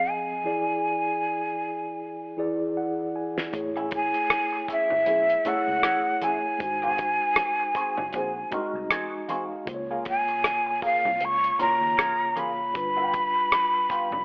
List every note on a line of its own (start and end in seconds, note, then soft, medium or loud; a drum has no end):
0.00 0.35 F3 medium
0.00 0.35 C4 medium
0.00 0.36 G#4 medium
0.00 0.36 D#5 medium
0.00 0.11 F5 medium
0.10 2.39 G#5 medium
0.44 1.85 E3 medium
0.44 1.86 E4 medium
0.44 1.86 G#4 medium
0.44 1.87 D5 medium
2.37 3.43 E3 medium
2.37 3.43 E4 medium
2.37 3.44 G#4 medium
2.37 3.44 D5 medium
2.77 3.12 F#5 medium
3.16 3.51 G#5 medium
3.38 snare medium
3.52 4.11 A1 medium
3.52 4.93 A3 medium
3.52 4.94 E4 medium
3.52 4.94 G#4 medium
3.52 4.94 C#5 medium
3.52 muted clean electric guitar stroke soft
3.52 kick loud
3.52 closed hi-hat medium
3.52 muted conga soft
3.76 3.89 C#4 medium
3.76 3.88 E4 medium
3.76 3.88 G#4 medium
3.76 cross-stick soft
3.91 muted clean electric guitar stroke soft
3.91 kick medium
3.91 closed hi-hat medium
3.91 muted conga soft
3.96 4.66 G#5 loud
4.14 muted clean electric guitar stroke soft
4.14 closed hi-hat soft
4.30 cross-stick loud
4.30 closed hi-hat medium
4.30 high conga medium
4.53 muted clean electric guitar stroke soft
4.68 4.85 C#4 medium
4.68 4.86 E4 medium
4.68 4.86 G#4 medium
4.68 5.50 E5 medium
4.68 muted fingered electric bass stroke soft
4.68 kick medium
4.68 closed hi-hat medium
4.90 5.03 G#1 medium
4.90 low conga medium
5.06 5.35 B1 medium
5.06 5.24 C#4 medium
5.06 5.24 E4 medium
5.06 5.24 G#4 medium
5.06 closed hi-hat medium
5.30 closed hi-hat soft
5.44 6.50 A3 medium
5.44 5.59 C#4 soft
5.44 6.51 E4 medium
5.44 5.59 E4 medium
5.44 6.51 G#4 medium
5.44 5.59 A4 medium
5.44 6.51 C#5 medium
5.44 6.26 F#5 medium
5.44 closed hi-hat medium
5.44 muted conga soft
5.44 low conga medium
5.67 5.80 C#2 medium
5.67 muted clean electric guitar stroke soft
5.83 6.01 C#4 medium
5.83 6.01 E4 medium
5.83 6.01 G#4 medium
5.83 cross-stick loud
5.83 closed hi-hat medium
5.83 high conga medium
6.22 6.35 C#4 medium
6.22 6.36 E4 medium
6.22 6.36 G#4 medium
6.22 8.54 G#5 medium
6.22 closed hi-hat medium
6.22 high conga medium
6.45 muted clean electric guitar stroke soft
6.58 7.18 G#1 loud
6.58 8.00 G#3 medium
6.58 8.00 D#4 medium
6.58 8.01 F#4 medium
6.58 8.01 C5 medium
6.58 muted clean electric guitar stroke soft
6.58 kick loud
6.58 closed hi-hat medium
6.58 muted conga soft
6.82 6.98 C4 soft
6.82 6.99 F#4 medium
6.82 6.99 G#4 medium
6.82 cross-stick soft
6.98 muted clean electric guitar stroke soft
6.98 kick medium
6.98 closed hi-hat medium
6.98 muted conga soft
7.22 muted clean electric guitar stroke soft
7.36 cross-stick loud
7.36 closed hi-hat medium
7.36 high conga medium
7.60 muted clean electric guitar stroke soft
7.75 7.93 C4 medium
7.75 7.93 F#4 medium
7.75 7.93 G#4 medium
7.75 muted fingered electric bass stroke soft
7.75 kick medium
7.75 closed hi-hat medium
7.97 8.10 F#1 medium
7.97 muted clean electric guitar stroke soft
7.97 low conga medium
8.13 8.43 A#1 medium
8.13 8.31 C4 medium
8.13 8.32 F#4 medium
8.13 8.32 G#4 medium
8.13 kick medium
8.13 closed hi-hat medium
8.13 low conga medium
8.37 muted clean electric guitar stroke soft
8.51 9.57 G#3 medium
8.51 8.66 C4 soft
8.51 9.57 D#4 medium
8.51 9.58 F#4 medium
8.51 8.66 F#4 medium
8.51 8.67 A#4 medium
8.51 9.58 D#5 medium
8.51 8.88 A#5 medium
8.51 kick medium
8.51 closed hi-hat medium
8.51 low conga medium
8.74 8.86 C2 medium
8.74 muted clean electric guitar stroke soft
8.90 9.08 C4 medium
8.90 9.08 F#4 medium
8.90 9.08 G#4 medium
8.90 9.26 G#5 medium
8.90 cross-stick loud
8.90 closed hi-hat loud
8.90 high conga medium
9.14 muted clean electric guitar stroke soft
9.28 9.43 C4 medium
9.28 9.43 F#4 medium
9.28 9.43 G#4 medium
9.28 9.65 F5 medium
9.28 closed hi-hat medium
9.28 high conga medium
9.52 muted clean electric guitar stroke soft
9.65 10.25 C#2 loud
9.65 11.07 C#3 medium
9.65 11.07 A#3 medium
9.65 11.08 F4 medium
9.65 9.75 C5 medium
9.65 muted clean electric guitar stroke soft
9.65 kick loud
9.65 closed hi-hat medium
9.65 muted conga soft
9.74 11.11 C#5 medium
9.91 10.03 A#3 medium
9.91 10.03 F4 medium
9.91 10.03 G#4 medium
10.05 muted clean electric guitar stroke soft
10.05 kick medium
10.05 closed hi-hat medium
10.05 muted conga soft
10.10 10.81 G#5 medium
10.28 muted clean electric guitar stroke soft
10.28 closed hi-hat soft
10.44 cross-stick loud
10.44 closed hi-hat medium
10.44 high conga medium
10.66 muted clean electric guitar stroke soft
10.82 11.00 A#3 medium
10.82 11.00 F4 medium
10.82 11.00 G#4 medium
10.82 11.26 F5 medium
10.82 muted fingered electric bass stroke soft
10.82 kick medium
10.82 open hi-hat soft
11.05 11.17 C2 medium
11.05 low conga medium
11.21 11.50 C#2 medium
11.21 muted clean electric guitar stroke soft
11.21 closed hi-hat medium
11.25 11.61 C#6 loud
11.44 closed hi-hat medium
11.58 12.64 C#3 medium
11.58 11.73 A#3 medium
11.58 12.65 A#3 medium
11.58 11.73 F4 medium
11.58 12.65 F4 medium
11.58 11.73 A#4 medium
11.58 12.66 C#5 medium
11.58 12.41 A#5 medium
11.58 closed hi-hat medium
11.58 low conga medium
11.81 11.94 D#2 medium
11.81 muted clean electric guitar stroke soft
11.97 12.15 A#3 medium
11.97 12.15 F4 medium
11.97 12.15 G#4 medium
11.97 cross-stick loud
11.97 closed hi-hat medium
11.97 high conga medium
12.20 muted clean electric guitar stroke soft
12.36 12.49 A#3 medium
12.36 12.50 F4 medium
12.36 12.50 G#4 medium
12.36 14.25 B5 medium
12.36 closed hi-hat medium
12.36 high conga medium
12.58 muted clean electric guitar stroke soft
12.74 13.33 G1 medium
12.74 14.15 G3 medium
12.74 14.16 D4 medium
12.74 14.16 F4 medium
12.74 14.16 B4 medium
12.74 muted clean electric guitar stroke soft
12.74 kick loud
12.74 closed hi-hat medium
12.74 muted conga soft
12.97 13.12 B3 soft
12.97 13.12 F4 medium
12.97 13.13 G4 medium
13.13 muted clean electric guitar stroke soft
13.13 kick medium
13.13 closed hi-hat medium
13.13 muted conga soft
13.36 muted clean electric guitar stroke soft
13.52 cross-stick loud
13.52 closed hi-hat medium
13.52 high conga medium
13.74 muted clean electric guitar stroke soft
13.89 14.07 B3 medium
13.89 14.07 F4 medium
13.89 14.08 G4 medium
13.89 muted fingered electric bass stroke soft
13.89 kick medium
13.89 closed hi-hat medium
14.11 14.24 F1 medium
14.11 low conga medium